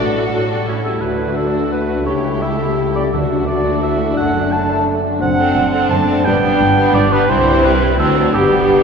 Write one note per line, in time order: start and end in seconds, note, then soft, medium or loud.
0.00 0.26 A1 soft
0.00 0.28 A2 soft
0.00 0.65 A2 soft
0.00 0.28 F#3 soft
0.00 0.14 D4 soft
0.00 0.28 D4 soft
0.00 0.14 F#4 soft
0.00 0.30 F#4 soft
0.00 0.84 F#4 soft
0.00 0.84 A4 soft
0.00 0.68 D5 soft
0.00 0.68 F#5 soft
0.15 1.35 A3 soft
0.15 0.30 D4 soft
0.15 0.30 F#4 soft
0.31 0.63 A2 soft
0.31 0.48 F#3 soft
0.31 0.48 D4 soft
0.31 0.68 F#4 soft
0.31 0.48 F#4 soft
0.49 0.67 G3 soft
0.49 0.66 D4 soft
0.49 0.66 F#4 soft
0.49 1.53 A4 soft
0.66 0.96 A1 soft
0.66 1.03 A2 soft
0.66 0.97 A2 soft
0.66 0.84 A3 soft
0.66 0.82 C#4 soft
0.66 0.82 E4 soft
0.83 1.02 G3 soft
0.83 1.01 C#4 soft
0.83 1.02 E4 soft
0.83 1.01 E4 soft
0.83 1.00 A4 soft
0.83 1.02 A4 soft
0.83 1.03 C#5 soft
1.00 2.03 D2 soft
1.00 2.08 D3 soft
1.00 3.08 A3 soft
1.00 3.09 A3 soft
1.00 1.35 A3 soft
1.00 2.02 D4 soft
1.00 2.02 F#4 soft
1.00 1.35 F#4 soft
1.00 1.36 B4 soft
1.00 1.38 B4 soft
1.18 1.87 D4 soft
1.36 2.41 A3 soft
1.36 2.06 A3 soft
1.36 2.06 F#4 soft
1.36 1.73 A4 soft
1.36 1.71 A4 soft
1.54 2.59 A4 soft
1.71 2.08 F#4 soft
1.71 2.06 B4 soft
1.88 2.08 D4 soft
2.06 3.13 C#2 soft
2.06 3.14 C#3 soft
2.06 2.42 A3 soft
2.06 3.08 E4 soft
2.06 3.08 G4 soft
2.06 3.10 G4 soft
2.06 2.42 G4 soft
2.06 2.44 C#5 medium
2.06 2.43 C#5 soft
2.24 2.94 G3 soft
2.42 3.46 A3 soft
2.42 3.12 A3 soft
2.42 3.12 G4 soft
2.42 2.78 E5 soft
2.60 3.63 A4 soft
2.78 3.14 G4 soft
2.95 3.14 G3 soft
2.95 3.15 D5 soft
2.95 3.04 D5 medium
3.12 4.17 D2 soft
3.12 4.19 D3 soft
3.12 3.61 D3 soft
3.12 5.17 A3 soft
3.12 3.46 A3 soft
3.12 5.17 D4 soft
3.12 4.17 F#4 soft
3.12 5.17 F#4 soft
3.12 3.46 F#4 soft
3.12 3.46 E5 soft
3.30 3.98 D4 soft
3.47 4.51 A3 soft
3.47 4.15 A3 soft
3.47 3.81 F#4 soft
3.47 3.81 D5 soft
3.64 4.68 A4 soft
3.82 4.17 E4 soft
3.82 6.26 F#4 soft
3.82 4.16 E5 soft
3.82 4.17 E5 medium
3.99 4.85 D4 soft
4.15 5.20 F#1 soft
4.15 5.20 F#2 soft
4.15 4.50 A3 soft
4.15 6.24 D4 soft
4.15 4.50 D4 soft
4.15 4.54 F#5 medium
4.15 4.51 F#5 medium
4.35 5.03 F#3 soft
4.51 5.19 A3 soft
4.51 6.27 A3 soft
4.51 5.19 D4 soft
4.51 4.86 A5 medium
4.51 4.87 A5 medium
4.70 5.72 A4 soft
4.87 5.90 D4 soft
5.04 5.37 F#3 soft
5.21 5.50 F#1 medium
5.21 5.50 F#2 medium
5.21 6.27 F#2 medium
5.21 6.21 C4 medium
5.21 6.23 C4 medium
5.21 7.12 D4 medium
5.21 5.92 F#5 medium
5.21 5.87 F#5 medium
5.38 6.07 F#3 soft
5.38 5.71 A3 soft
5.38 5.72 C4 soft
5.38 5.71 D4 soft
5.56 5.85 F#1 medium
5.56 5.85 F#2 medium
5.56 6.27 C4 soft
5.72 6.07 A3 soft
5.72 6.06 C4 soft
5.72 6.06 D4 medium
5.72 6.27 A4 soft
5.91 6.20 F#1 medium
5.91 6.20 F#2 medium
5.91 6.93 D4 soft
5.91 6.25 A5 medium
5.91 6.26 A5 medium
6.07 6.27 F#3 soft
6.07 6.25 A3 soft
6.07 6.24 C4 soft
6.07 6.24 D4 soft
6.24 6.54 G1 medium
6.24 6.54 G2 medium
6.24 7.30 G2 medium
6.24 6.41 G3 soft
6.24 7.27 B3 medium
6.24 6.41 B3 soft
6.24 7.12 B3 medium
6.24 7.30 D4 medium
6.24 6.41 D4 soft
6.24 6.94 G5 medium
6.24 6.96 G5 medium
6.42 7.10 D3 soft
6.42 6.76 G3 medium
6.42 6.75 B3 medium
6.42 6.76 D4 soft
6.60 6.89 G1 medium
6.60 6.89 G2 medium
6.60 7.30 B3 soft
6.76 7.11 G3 medium
6.76 7.10 B3 medium
6.76 7.11 D4 medium
6.76 7.80 G4 soft
6.94 7.23 G1 medium
6.94 7.23 G2 medium
6.94 7.30 D4 soft
6.94 7.14 D5 medium
6.94 7.11 D5 medium
7.11 7.30 D3 soft
7.11 7.28 G3 medium
7.11 7.28 B3 medium
7.11 7.29 D4 medium
7.11 7.30 B4 medium
7.11 7.32 B4 medium
7.28 7.95 C2 medium
7.28 8.00 C3 medium
7.28 7.95 G3 medium
7.28 8.04 C4 medium
7.28 7.95 C4 medium
7.28 8.33 C4 medium
7.28 7.95 E4 medium
7.28 7.74 E4 medium
7.28 7.98 E4 medium
7.28 7.66 C5 medium
7.28 7.64 C5 medium
7.46 8.00 G3 soft
7.64 8.36 C4 soft
7.64 7.98 B4 medium
7.64 7.99 B4 medium
7.81 8.00 G4 soft
7.98 8.35 D2 medium
7.98 8.36 D3 soft
7.98 8.35 F#3 medium
7.98 8.35 C4 medium
7.98 8.34 D4 medium
7.98 8.35 F#4 medium
7.98 8.34 A4 medium
7.98 8.36 A4 medium
8.17 8.83 D4 soft
8.17 8.37 F#4 soft
8.34 8.83 G1 medium
8.34 8.83 G2 medium
8.34 8.83 G2 soft
8.34 8.83 G3 medium
8.34 8.83 B3 soft
8.34 8.83 B3 medium
8.34 8.83 D4 soft
8.34 8.83 G4 medium
8.34 8.83 G4 soft
8.34 8.83 G4 medium
8.53 8.83 D3 soft
8.71 8.83 B3 soft